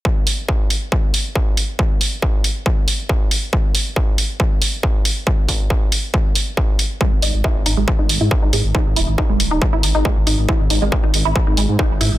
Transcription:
0.05 kick
0.27 open hi-hat
0.49 kick
0.70 open hi-hat
0.92 kick
1.14 open hi-hat
1.35 kick
1.57 open hi-hat
1.79 kick
2.01 open hi-hat
2.22 kick
2.44 open hi-hat
2.66 kick
2.88 open hi-hat
3.09 kick
3.31 open hi-hat
3.53 kick
3.75 open hi-hat
3.96 kick
4.18 open hi-hat
4.40 kick
4.62 open hi-hat
4.83 kick
5.05 open hi-hat
5.27 kick
5.48 kick, open hi-hat
5.70 kick
5.92 open hi-hat
6.14 kick
6.35 open hi-hat
6.57 kick
6.79 open hi-hat
7.01 G#3, kick
7.12 G#1
7.22 G#1 D#4, open hi-hat
7.34 G#1
7.44 E4, kick
7.56 G#1
7.66 G#1 D#4, open hi-hat
7.77 G#1 G#3
7.88 kick
7.99 G#1 D#4
8.09 G#1, open hi-hat
8.21 G#2 E4
8.31 kick
8.43 G#1 D#4
8.53 G#2 G#3, open hi-hat
8.64 G#1
8.75 D#4, kick
8.86 G#1
8.96 D#1 E4, open hi-hat
9.08 G#1
9.18 D#4, kick
9.30 D#1 G#3
9.40 D#1, open hi-hat
9.51 D#1 D#4
9.62 kick
9.73 G#1 E4
9.83 G#1, open hi-hat
9.95 G#1 D#4
10.05 G#3, kick
10.17 G#1
10.27 G#1 D#4, open hi-hat
10.38 G#1
10.49 E4, kick
10.60 G#1
10.70 G#1 D#4, open hi-hat
10.82 G#1 G#3
10.92 kick
11.04 G#1 D#4
11.14 G#1, open hi-hat
11.25 G#1 E4
11.36 kick
11.47 G#1 D#4
11.57 G#1 G#3, open hi-hat
11.69 G#2
11.79 D#4, kick
11.90 G#1
12.01 G#2 E4, open hi-hat
12.12 G#1

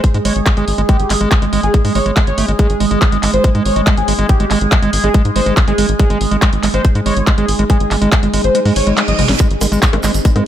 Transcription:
Already playing: G#3 D#4 G#4 D#5 G#5
0.04 kick, closed hi-hat
0.14 G#2 G#3, closed hi-hat
0.25 G#1 G#3 C#5, open hi-hat
0.36 G#1, closed hi-hat
0.46 G#3, kick, clap, closed hi-hat
0.57 G#1 G#3 G#4, closed hi-hat
0.68 G#1, open hi-hat
0.78 G#1 G#3, closed hi-hat
0.89 G#3 G4, kick, closed hi-hat
1.00 G#1, closed hi-hat
1.10 G#1 G#3, clap, open hi-hat
1.21 G#1 G#3, closed hi-hat
1.31 kick, clap, closed hi-hat
1.42 G#1 G#3, closed hi-hat
1.53 G#1 G#3, open hi-hat
1.63 G#1 G#4, closed hi-hat
1.74 G#3, kick, closed hi-hat
1.85 G#2 G#3, open hi-hat
1.95 G#1 G#3 C#5, open hi-hat
2.06 G#1 G#3, closed hi-hat
2.17 G#3, kick, clap, closed hi-hat
2.27 G#1 C#5, closed hi-hat
2.38 G#1 A3, open hi-hat
2.48 G#1 G#3, closed hi-hat
2.59 G#3 G#4, kick, closed hi-hat
2.70 G#1, closed hi-hat
2.80 G#1 G#3, open hi-hat
2.91 G#1 G#3, closed hi-hat
3.02 kick, clap, closed hi-hat
3.12 G#1 G#3, closed hi-hat
3.23 G#1 G#3, clap, open hi-hat
3.34 G#1 C5, closed hi-hat
3.44 G#3, kick, closed hi-hat
3.55 G#2 G#3, closed hi-hat
3.65 G#1 C#5, open hi-hat
3.76 G#1 G#3, closed hi-hat
3.87 G#3, kick, clap, closed hi-hat
3.97 G#1 G#4, closed hi-hat
4.08 G#1 G#3, open hi-hat
4.19 G#1 G#3, closed hi-hat
4.29 G4, kick, closed hi-hat
4.40 G#1 G#3, closed hi-hat
4.51 G#1 G#3, clap, open hi-hat
4.61 G#1, closed hi-hat
4.72 G#3, kick, clap, closed hi-hat
4.82 G#1 G#3, closed hi-hat
4.93 G#1, open hi-hat
5.04 G#1 G#3 G#4, closed hi-hat
5.14 G#3, kick, closed hi-hat
5.25 G#2, closed hi-hat
5.36 G#1 G#3 C5, open hi-hat
5.46 G#1 G#3, closed hi-hat
5.57 kick, clap, closed hi-hat
5.68 G#1 G#3 G#4, closed hi-hat
5.78 G#1 G#3, open hi-hat
5.89 G#1, closed hi-hat
6.00 G#3 G#4, kick, closed hi-hat
6.10 G#1 G#3, closed hi-hat
6.21 G#1, open hi-hat
6.31 G#1 G#3, closed hi-hat
6.42 G#3, kick, clap, closed hi-hat
6.53 G#1, closed hi-hat
6.63 G#1 G#3, clap, open hi-hat
6.74 G#1 G#3 C5, closed hi-hat
6.85 kick, closed hi-hat
6.95 G#2 G#3, closed hi-hat
7.06 G#1 G#3 C#5, open hi-hat
7.16 G#1, closed hi-hat
7.27 G#3, kick, clap, closed hi-hat
7.38 G#1 G#3 G#4, closed hi-hat
7.48 G#1, open hi-hat
7.59 G#1 G#3, closed hi-hat
7.70 G#3 G#4, kick, closed hi-hat
7.80 G#1, closed hi-hat
7.91 G#1 G#3, clap, open hi-hat
8.02 G#1 G#3, closed hi-hat
8.12 kick, clap, closed hi-hat
8.23 G#1 G#3, closed hi-hat
8.34 G#1 G#3, open hi-hat
8.44 G#1 C5, closed hi-hat
8.55 G#3, closed hi-hat, reverse cymbal
8.65 G#2 G#3, open hi-hat
8.76 G#1 C#5, open hi-hat
8.87 G#1 G#3, closed hi-hat
8.97 G#3, clap, closed hi-hat
9.08 G#1 D#5, closed hi-hat, high tom
9.19 G#1 G#3, open hi-hat, mid tom
9.29 G#1 G3, snare, closed hi-hat
9.40 G#3 C4 C5, kick, closed hi-hat, maracas
9.51 G#1, closed hi-hat
9.61 G#1 G#3, open hi-hat, high bongo, maracas
9.72 G#1 G#3, closed hi-hat, maracas
9.82 kick, clap, closed hi-hat, maracas
9.93 G#1 G#3, closed hi-hat, high bongo
10.03 G#1 G#3, clap, open hi-hat, maracas
10.14 G#1, closed hi-hat, maracas
10.25 G#3, kick, closed hi-hat, maracas
10.36 G#2 G#3 C4, closed hi-hat, high bongo

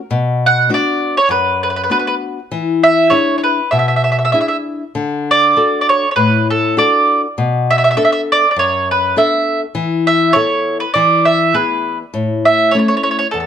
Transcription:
0.11 B2
0.46 F#5
0.69 B3 D4 F#4
0.74 D5
1.17 C#5
1.29 F#2 B4
1.63 B4
1.70 B4
1.76 B4
1.84 B4
1.90 B3 D4 F#4 B4
1.99 B4
2.07 B4
2.51 E3
2.83 E5
3.10 D4 E4 G#4 C#5
3.38 C#5
3.44 B4
3.71 B2 E5
3.79 E5
3.88 E5
3.96 E5
4.04 E5
4.12 E5
4.19 E5
4.25 E5
4.32 D4 E4 G#4 E5
4.41 E5
4.48 E5
4.95 D3
5.31 D5
5.56 D4 F#4 A4
5.81 D5
5.89 C#5
6.11 C#5
6.16 A2 B4
6.50 A4
6.77 D4 F#4 A4 D5
7.38 B2
7.71 E5
7.78 E5
7.84 E5
7.91 E5
7.97 B3 D4 A4 E5
8.05 E5
8.12 E5
8.32 D5
8.51 D5
8.56 F#2 C#5
8.91 B4
9.16 B3 D4 A4 E5
9.75 E3
10.07 E5
10.33 B3 E4 A4 C#5
10.80 B4
10.94 E3 D5
11.25 E5
11.54 B3 E4 G#4 B4
12.14 A2
12.45 E5
12.71 A3 C#4 E4 C#5
12.79 C#5
12.88 C#5
12.97 C#5
13.03 C#5
13.11 C#5
13.19 C#5
13.31 E2 A4
13.40 A4

